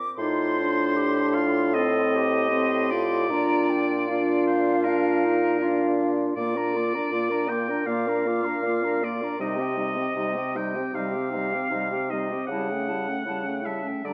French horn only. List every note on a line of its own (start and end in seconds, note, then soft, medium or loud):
0.20 0.61 D#4 medium
0.60 1.77 D4 medium
1.75 2.51 C4 medium
2.52 2.94 C4 medium
2.92 3.32 F4 medium
3.31 4.08 D4 medium
4.09 4.89 D4 medium
4.88 5.61 F4 medium
5.60 6.35 D4 medium
6.37 6.58 A#3 medium
6.56 6.77 D4 medium
6.75 6.98 A#3 medium
6.96 7.13 D4 medium
7.14 7.32 A#3 medium
7.31 7.50 D4 medium
7.48 7.71 A#3 medium
7.70 7.86 D4 medium
7.87 8.09 A#3 medium
8.07 8.28 D4 medium
8.26 8.46 A#3 medium
8.45 8.64 D4 medium
8.64 8.85 A#3 medium
8.84 9.04 D4 medium
9.03 9.24 A#3 medium
9.23 9.39 D4 medium
9.40 9.60 G3 medium
9.58 9.79 C4 medium
9.78 9.98 G3 medium
9.97 10.16 C4 medium
10.18 10.38 G3 medium
10.37 10.59 C4 soft
10.57 10.78 G3 medium
10.76 10.95 C4 soft
10.97 11.17 G3 medium
11.15 11.37 C4 medium
11.36 11.57 G3 soft
11.55 11.73 C4 soft
11.76 11.96 G3 medium
11.94 12.15 C4 soft
12.13 12.35 G3 soft
12.33 12.50 C4 soft
12.53 12.73 G3 medium
12.72 12.92 A3 soft
12.91 13.10 G3 soft
13.09 13.27 A3 soft
13.28 13.49 G3 soft
13.48 13.69 A3 soft
13.67 13.87 G3 soft
13.86 14.05 A3 soft
14.05 14.13 G3 soft